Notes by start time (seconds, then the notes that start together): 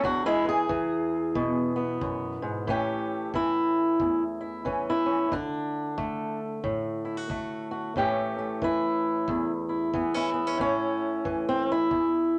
0.03 E2 D4 F#4, kick
0.26 G#3 E4
0.44 E3
0.49 G#4
0.69 E3, kick
1.35 B2, kick
1.76 B3
2.01 F#2, kick
2.42 G#2
2.67 A2 E3 A3 C#4 G4, kick
3.34 E3 E4, kick
4.00 E2, kick
4.41 E4
4.65 E3 C#4, kick
4.90 E4
5.06 C#4
5.31 D3 D4, kick
5.98 A3, kick
6.64 A2, kick
7.05 E4
7.17 F#4
7.30 A3, kick
7.71 F#4
7.96 A2 E3 A3 C#4 G4, kick
8.39 A3
8.62 E3 E4, kick
9.28 E2, kick
9.69 E4
9.94 E3 B3, kick
10.14 C#4 E4
10.33 B3
10.47 C#4
10.57 A2 C#4, kick
11.25 E3, kick
11.49 C4
11.72 E4
11.90 E2, kick